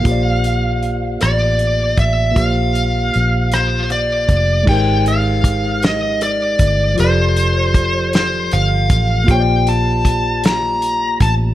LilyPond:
<<
  \new Staff \with { instrumentName = "Lead electric guitar" } { \time 6/8 \key bes \lydian \tempo 4. = 52 f''4. d''4 e''8 | f''4. c''8 d''4 | g''8 f''4 ees''8 d''4 | c''4. c''8 f''4 |
g''8 a''4 bes''4 a''8 | }
  \new Staff \with { instrumentName = "Tine electric piano" } { \time 6/8 \key bes \lydian <bes f' g' c'' d''>2. | <bes f' g' c'' f''>2. | <aes ees' g' bes' c''>2. | <f f' g' a' d''>2. |
<bes f' g' c'' des'' d''>2. | }
  \new Staff \with { instrumentName = "Fingered electric bass" } { \clef bass \time 6/8 \key bes \lydian bes,,4. a,,4 a,,8 | bes,,4 bes,,4. f,,8 | aes,,2~ aes,,8 g,,8 | f,,2 g,,8 a,,8 |
bes,,2~ bes,,8 a,,8 | }
  \new DrumStaff \with { instrumentName = "Drums" } \drummode { \time 6/8 <hh bd>8 hh8 hh8 <hh ss>8 hh8 <hh bd>8 | <hh bd>8 hh8 hh8 <hh ss>8 hh8 <hh bd>8 | <cymc bd>8 hh8 <hh bd>8 <hh sn>8 hh8 <hh bd>8 | hh8 hh8 <hh bd>8 <hh sn>8 hh8 <hh bd>8 |
<hh bd>8 hh8 <hh bd>8 <hh sn>8 hh8 <hh bd>8 | }
>>